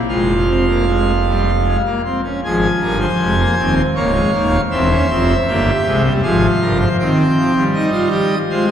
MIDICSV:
0, 0, Header, 1, 2, 480
1, 0, Start_track
1, 0, Key_signature, -4, "minor"
1, 0, Tempo, 774194
1, 60, Time_signature, 3, 2, 24, 8
1, 1979, Tempo, 756620
1, 5480, End_track
2, 0, Start_track
2, 0, Title_t, "Pipe organ"
2, 0, Program_c, 0, 19
2, 53, Note_on_c, 0, 29, 68
2, 53, Note_on_c, 0, 41, 64
2, 53, Note_on_c, 0, 56, 65
2, 54, Note_on_c, 0, 77, 67
2, 55, Note_on_c, 0, 65, 66
2, 205, Note_off_c, 0, 56, 0
2, 301, Note_on_c, 0, 60, 64
2, 405, Note_off_c, 0, 60, 0
2, 421, Note_on_c, 0, 58, 63
2, 526, Note_off_c, 0, 58, 0
2, 539, Note_on_c, 0, 56, 65
2, 690, Note_off_c, 0, 56, 0
2, 786, Note_on_c, 0, 55, 65
2, 936, Note_off_c, 0, 55, 0
2, 1025, Note_on_c, 0, 56, 62
2, 1094, Note_off_c, 0, 29, 0
2, 1094, Note_off_c, 0, 41, 0
2, 1095, Note_off_c, 0, 77, 0
2, 1096, Note_off_c, 0, 65, 0
2, 1129, Note_off_c, 0, 56, 0
2, 1147, Note_on_c, 0, 58, 57
2, 1250, Note_off_c, 0, 58, 0
2, 1269, Note_on_c, 0, 60, 62
2, 1371, Note_off_c, 0, 60, 0
2, 1388, Note_on_c, 0, 61, 57
2, 1490, Note_off_c, 0, 61, 0
2, 1511, Note_on_c, 0, 80, 75
2, 1513, Note_on_c, 0, 32, 70
2, 1513, Note_on_c, 0, 44, 74
2, 1513, Note_on_c, 0, 68, 73
2, 1514, Note_on_c, 0, 53, 86
2, 1657, Note_off_c, 0, 32, 0
2, 1657, Note_off_c, 0, 44, 0
2, 1657, Note_off_c, 0, 68, 0
2, 1746, Note_on_c, 0, 70, 74
2, 1748, Note_on_c, 0, 31, 71
2, 1749, Note_on_c, 0, 43, 73
2, 1847, Note_off_c, 0, 70, 0
2, 1862, Note_on_c, 0, 72, 70
2, 1893, Note_off_c, 0, 31, 0
2, 1894, Note_off_c, 0, 43, 0
2, 1917, Note_off_c, 0, 53, 0
2, 1978, Note_on_c, 0, 56, 88
2, 1980, Note_on_c, 0, 41, 71
2, 1981, Note_on_c, 0, 29, 71
2, 2082, Note_off_c, 0, 56, 0
2, 2100, Note_on_c, 0, 58, 83
2, 2129, Note_off_c, 0, 41, 0
2, 2130, Note_off_c, 0, 29, 0
2, 2204, Note_off_c, 0, 58, 0
2, 2225, Note_on_c, 0, 27, 69
2, 2226, Note_on_c, 0, 39, 71
2, 2226, Note_on_c, 0, 60, 93
2, 2330, Note_off_c, 0, 80, 0
2, 2374, Note_off_c, 0, 27, 0
2, 2374, Note_off_c, 0, 39, 0
2, 2374, Note_off_c, 0, 60, 0
2, 2378, Note_off_c, 0, 72, 0
2, 2461, Note_on_c, 0, 73, 79
2, 2464, Note_on_c, 0, 58, 92
2, 2465, Note_on_c, 0, 25, 75
2, 2467, Note_on_c, 0, 37, 71
2, 2467, Note_on_c, 0, 77, 79
2, 2567, Note_off_c, 0, 58, 0
2, 2583, Note_on_c, 0, 56, 79
2, 2614, Note_off_c, 0, 25, 0
2, 2615, Note_off_c, 0, 37, 0
2, 2687, Note_off_c, 0, 56, 0
2, 2704, Note_on_c, 0, 39, 68
2, 2707, Note_on_c, 0, 58, 87
2, 2708, Note_on_c, 0, 27, 72
2, 2853, Note_off_c, 0, 39, 0
2, 2855, Note_off_c, 0, 58, 0
2, 2856, Note_off_c, 0, 27, 0
2, 2876, Note_off_c, 0, 73, 0
2, 2879, Note_off_c, 0, 77, 0
2, 2942, Note_on_c, 0, 28, 77
2, 2942, Note_on_c, 0, 76, 81
2, 2943, Note_on_c, 0, 40, 71
2, 2944, Note_on_c, 0, 60, 91
2, 2947, Note_on_c, 0, 72, 80
2, 3048, Note_off_c, 0, 60, 0
2, 3060, Note_on_c, 0, 61, 93
2, 3092, Note_off_c, 0, 28, 0
2, 3093, Note_off_c, 0, 40, 0
2, 3166, Note_off_c, 0, 61, 0
2, 3184, Note_on_c, 0, 41, 78
2, 3188, Note_on_c, 0, 60, 96
2, 3190, Note_on_c, 0, 29, 82
2, 3334, Note_off_c, 0, 41, 0
2, 3337, Note_off_c, 0, 60, 0
2, 3338, Note_off_c, 0, 29, 0
2, 3361, Note_off_c, 0, 72, 0
2, 3425, Note_on_c, 0, 43, 82
2, 3426, Note_on_c, 0, 31, 81
2, 3427, Note_on_c, 0, 58, 94
2, 3427, Note_on_c, 0, 67, 77
2, 3576, Note_off_c, 0, 31, 0
2, 3576, Note_off_c, 0, 43, 0
2, 3577, Note_off_c, 0, 58, 0
2, 3669, Note_on_c, 0, 48, 77
2, 3671, Note_on_c, 0, 36, 75
2, 3671, Note_on_c, 0, 56, 88
2, 3774, Note_off_c, 0, 56, 0
2, 3774, Note_off_c, 0, 76, 0
2, 3794, Note_on_c, 0, 55, 91
2, 3819, Note_off_c, 0, 48, 0
2, 3820, Note_off_c, 0, 36, 0
2, 3842, Note_off_c, 0, 67, 0
2, 3896, Note_off_c, 0, 55, 0
2, 3906, Note_on_c, 0, 77, 85
2, 3907, Note_on_c, 0, 68, 84
2, 3908, Note_on_c, 0, 53, 93
2, 3910, Note_on_c, 0, 44, 81
2, 3911, Note_on_c, 0, 32, 84
2, 4057, Note_off_c, 0, 68, 0
2, 4059, Note_off_c, 0, 44, 0
2, 4060, Note_off_c, 0, 32, 0
2, 4150, Note_on_c, 0, 31, 80
2, 4150, Note_on_c, 0, 43, 79
2, 4152, Note_on_c, 0, 70, 81
2, 4254, Note_off_c, 0, 70, 0
2, 4269, Note_on_c, 0, 72, 75
2, 4299, Note_off_c, 0, 31, 0
2, 4299, Note_off_c, 0, 43, 0
2, 4320, Note_off_c, 0, 77, 0
2, 4322, Note_off_c, 0, 53, 0
2, 4373, Note_off_c, 0, 72, 0
2, 4389, Note_on_c, 0, 60, 102
2, 4391, Note_on_c, 0, 79, 83
2, 4393, Note_on_c, 0, 51, 86
2, 4540, Note_off_c, 0, 51, 0
2, 4631, Note_on_c, 0, 53, 84
2, 4732, Note_off_c, 0, 53, 0
2, 4750, Note_on_c, 0, 55, 84
2, 4799, Note_off_c, 0, 60, 0
2, 4800, Note_off_c, 0, 79, 0
2, 4863, Note_on_c, 0, 63, 99
2, 4864, Note_on_c, 0, 75, 92
2, 4966, Note_off_c, 0, 63, 0
2, 4977, Note_on_c, 0, 65, 96
2, 5082, Note_off_c, 0, 65, 0
2, 5103, Note_on_c, 0, 67, 100
2, 5250, Note_off_c, 0, 67, 0
2, 5258, Note_off_c, 0, 55, 0
2, 5272, Note_off_c, 0, 75, 0
2, 5346, Note_on_c, 0, 72, 91
2, 5348, Note_on_c, 0, 56, 90
2, 5349, Note_on_c, 0, 65, 101
2, 5447, Note_off_c, 0, 65, 0
2, 5460, Note_on_c, 0, 63, 101
2, 5480, Note_off_c, 0, 56, 0
2, 5480, Note_off_c, 0, 63, 0
2, 5480, Note_off_c, 0, 72, 0
2, 5480, End_track
0, 0, End_of_file